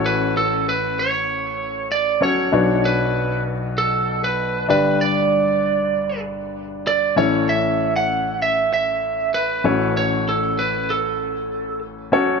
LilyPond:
<<
  \new Staff \with { instrumentName = "Lead electric guitar" } { \time 4/4 \key fis \phrygian \tempo 4 = 97 b'8 a'8 b'8 cis''4. d''8 cis''8~ | cis''8 b'4 r8 a'8. b'8. b'8 | d''2 r4 d''8 cis''8 | e''8. fis''8. e''8 e''4 b'4 |
cis''8 a'8 b'8 a'4. r4 | }
  \new Staff \with { instrumentName = "Grand piano" } { \time 4/4 \key fis \phrygian <cis' fis' a' cis''>4 r2 r8 <cis' fis' a' cis''>8 | <d' fis' b' cis''>4. r2 <d' g' b' d''>8~ | <d' g' b' d''>4 r2 r8 <cis' e' a' cis''>8~ | <cis' e' a' cis''>4 r2 r8 <cis' fis' a' cis''>8~ |
<cis' fis' a' cis''>4 r2 r8 <cis' fis' a' cis''>8 | }
  \new Staff \with { instrumentName = "Grand piano" } { \clef bass \time 4/4 \key fis \phrygian <a,, a,>2.~ <a,, a,>8 r8 | <b,, b,>2.~ <b,, b,>8 <g,, g,>8~ | <g,, g,>2.~ <g,, g,>8 <a,, a,>8~ | <a,, a,>2.~ <a,, a,>8 <a,, a,>8~ |
<a,, a,>2.~ <a,, a,>8 r8 | }
>>